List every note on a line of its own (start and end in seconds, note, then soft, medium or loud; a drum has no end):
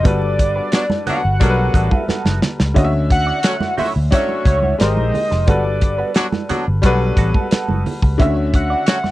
0.03 0.59 G1 loud
0.03 0.90 G3 medium
0.03 0.20 B3 medium
0.03 0.90 F#4 medium
0.03 0.20 F#4 medium
0.03 0.91 A4 medium
0.03 0.21 A4 medium
0.03 0.92 B4 medium
0.03 1.07 D5 loud
0.03 kick loud
0.03 closed hi-hat medium
0.03 muted conga soft
0.03 low conga medium
0.22 muted conga soft
0.39 muted clean electric guitar stroke soft
0.39 kick medium
0.39 closed hi-hat medium
0.56 0.68 B3 soft
0.56 0.68 F#4 soft
0.56 0.67 B4 soft
0.72 0.84 F#3 medium
0.72 0.84 B3 medium
0.72 0.84 D4 medium
0.72 0.84 F#4 medium
0.72 muted clean electric guitar stroke soft
0.72 snare loud
0.72 closed hi-hat loud
0.72 muted conga soft
0.90 muted clean electric guitar stroke soft
0.90 snare soft
0.90 muted conga soft
0.90 high conga medium
1.06 1.21 F#3 medium
1.06 1.21 B3 medium
1.06 1.22 B3 medium
1.06 1.21 D4 medium
1.06 1.21 F#4 medium
1.06 1.22 F#4 medium
1.06 1.23 A4 medium
1.06 1.97 F#5 loud
1.06 muted fingered electric bass stroke soft
1.06 closed hi-hat medium
1.06 low conga medium
1.25 1.38 G1 medium
1.40 1.68 B1 loud
1.40 1.89 F#3 medium
1.40 2.26 G3 medium
1.40 1.89 B3 medium
1.40 1.89 D4 medium
1.40 1.89 F#4 medium
1.40 2.26 F#4 medium
1.40 2.27 A4 medium
1.40 1.48 A#4 medium
1.40 muted clean electric guitar stroke soft
1.40 kick loud
1.40 closed hi-hat medium
1.40 muted conga soft
1.40 high conga medium
1.50 2.31 B4 medium
1.58 muted clean electric guitar stroke soft
1.74 1.88 A1 medium
1.74 1.86 B3 medium
1.74 1.87 F#4 medium
1.74 1.87 A4 medium
1.74 kick loud
1.74 closed hi-hat medium
1.91 2.04 B3 soft
1.91 2.04 F#4 soft
1.91 2.03 A4 medium
1.91 kick medium
1.91 high conga medium
1.97 2.40 E5 loud
2.08 2.40 B3 medium
2.08 2.40 F#4 medium
2.08 2.40 A4 medium
2.08 muted fingered electric bass stroke medium
2.08 snare medium
2.08 muted conga soft
2.08 high conga soft
2.25 2.39 F#1 medium
2.25 snare medium
2.25 high conga medium
2.42 snare medium
2.42 low conga medium
2.60 2.73 C#2 medium
2.60 muted clean electric guitar stroke soft
2.60 snare medium
2.74 3.30 D2 loud
2.74 3.61 D3 medium
2.74 3.61 C#4 medium
2.74 2.91 E4 medium
2.74 2.91 F#4 medium
2.74 3.62 F#4 medium
2.74 2.92 C#5 medium
2.74 2.84 D#5 medium
2.74 kick loud
2.74 closed hi-hat medium
2.74 low conga medium
2.85 3.66 E5 medium
2.93 muted conga soft
3.10 3.75 F#5 loud
3.10 muted clean electric guitar stroke soft
3.10 kick loud
3.10 closed hi-hat medium
3.27 3.39 E4 soft
3.27 3.39 F#4 soft
3.27 3.39 D5 medium
3.43 3.55 F#3 medium
3.43 3.55 A3 medium
3.43 3.55 C#4 medium
3.43 3.55 F#4 medium
3.43 snare loud
3.43 closed hi-hat loud
3.60 muted clean electric guitar stroke soft
3.60 snare soft
3.60 muted conga soft
3.60 high conga medium
3.77 3.92 F#3 medium
3.77 3.92 A3 medium
3.77 3.92 C#4 medium
3.77 3.98 E4 medium
3.77 3.92 F#4 medium
3.77 3.95 F#4 medium
3.77 3.94 C#5 medium
3.77 3.92 E5 medium
3.77 muted fingered electric bass stroke soft
3.77 open hi-hat medium
3.77 low conga medium
3.95 4.09 D2 medium
3.95 muted clean electric guitar stroke soft
4.11 4.60 F#3 medium
4.11 4.60 A3 medium
4.11 4.80 C#4 medium
4.11 4.60 C#4 medium
4.11 4.79 D4 medium
4.11 4.60 F#4 medium
4.11 4.80 F#4 medium
4.11 4.76 C#5 loud
4.11 4.81 E5 medium
4.11 muted clean electric guitar stroke soft
4.11 kick loud
4.11 closed hi-hat medium
4.11 muted conga soft
4.11 high conga medium
4.29 muted clean electric guitar stroke soft
4.29 muted conga soft
4.45 4.73 C#2 medium
4.45 4.58 E4 soft
4.45 4.58 F#4 medium
4.45 4.59 C#5 medium
4.45 kick loud
4.45 closed hi-hat medium
4.62 4.76 E4 soft
4.62 4.75 F#4 soft
4.62 4.75 C#5 medium
4.62 high conga medium
4.78 4.97 G#1 loud
4.78 5.33 G#3 medium
4.78 5.11 C4 medium
4.78 5.34 G4 medium
4.78 5.12 G4 medium
4.78 5.35 A#4 medium
4.78 5.12 A#4 medium
4.78 5.35 C5 medium
4.78 5.49 D#5 loud
4.78 snare loud
4.78 closed hi-hat medium
4.97 5.11 A#1 medium
4.97 high conga medium
5.14 open hi-hat medium
5.14 low conga medium
5.31 5.48 F1 medium
5.31 muted clean electric guitar stroke soft
5.31 snare soft
5.46 6.02 G1 loud
5.46 6.33 G3 medium
5.46 5.63 B3 medium
5.46 6.33 F#4 medium
5.46 5.63 F#4 medium
5.46 6.34 A4 medium
5.46 5.64 A4 medium
5.46 6.35 B4 medium
5.46 6.50 D5 medium
5.46 kick loud
5.46 closed hi-hat medium
5.46 muted conga soft
5.46 low conga medium
5.65 muted conga soft
5.81 muted clean electric guitar stroke soft
5.81 kick medium
5.81 closed hi-hat medium
5.98 6.11 B3 soft
5.98 6.11 F#4 medium
5.98 6.10 B4 medium
6.14 6.26 F#3 medium
6.14 6.26 B3 medium
6.14 6.26 D4 medium
6.14 6.26 F#4 loud
6.14 snare loud
6.14 closed hi-hat medium
6.14 muted conga soft
6.32 muted clean electric guitar stroke soft
6.32 snare soft
6.32 muted conga soft
6.32 high conga medium
6.49 6.64 F#3 medium
6.49 6.65 B3 medium
6.49 6.64 B3 medium
6.49 6.64 D4 medium
6.49 6.64 F#4 medium
6.49 6.65 F#4 medium
6.49 6.65 A4 medium
6.49 muted fingered electric bass stroke soft
6.49 closed hi-hat medium
6.49 low conga medium
6.66 6.81 G1 medium
6.66 muted clean electric guitar stroke soft
6.82 7.11 B1 loud
6.82 7.32 F#3 medium
6.82 7.68 G3 loud
6.82 7.32 B3 medium
6.82 7.32 D4 medium
6.82 7.69 F#4 medium
6.82 7.32 F#4 medium
6.82 7.70 A4 medium
6.82 muted clean electric guitar stroke soft
6.82 kick loud
6.82 closed hi-hat medium
6.82 muted conga soft
6.82 high conga medium
6.86 7.70 B4 loud
7.01 muted clean electric guitar stroke soft
7.17 7.31 A1 medium
7.17 7.29 B3 medium
7.17 7.30 F#4 medium
7.17 7.30 A4 medium
7.17 kick loud
7.17 closed hi-hat medium
7.34 7.47 B3 soft
7.34 7.47 F#4 medium
7.34 7.46 A4 medium
7.34 kick medium
7.34 high conga medium
7.51 7.83 B3 medium
7.51 7.83 F#4 medium
7.51 7.84 A4 medium
7.51 muted fingered electric bass stroke soft
7.51 snare loud
7.51 closed hi-hat loud
7.69 7.82 F#1 medium
7.69 muted conga soft
7.69 high conga medium
7.86 open hi-hat medium
7.86 low conga medium
8.02 8.16 C#2 medium
8.02 muted clean electric guitar stroke soft
8.02 kick medium
8.18 8.74 D2 loud
8.18 9.04 D3 medium
8.18 9.05 C#4 medium
8.18 8.35 E4 medium
8.18 9.06 F#4 medium
8.18 8.35 F#4 medium
8.18 8.35 C#5 medium
8.18 9.06 E5 medium
8.18 kick loud
8.18 closed hi-hat medium
8.18 muted conga soft
8.18 low conga medium
8.37 muted conga soft
8.54 9.11 F#5 loud
8.54 muted clean electric guitar stroke soft
8.54 kick medium
8.54 closed hi-hat medium
8.70 8.83 E4 soft
8.70 8.83 F#4 soft
8.70 8.82 D5 medium
8.87 8.98 F#3 medium
8.87 8.98 A3 medium
8.87 8.98 C#4 medium
8.87 8.98 F#4 medium
8.87 muted clean electric guitar stroke soft
8.87 snare loud
8.87 closed hi-hat medium
9.04 muted clean electric guitar stroke soft
9.04 snare soft
9.04 high conga medium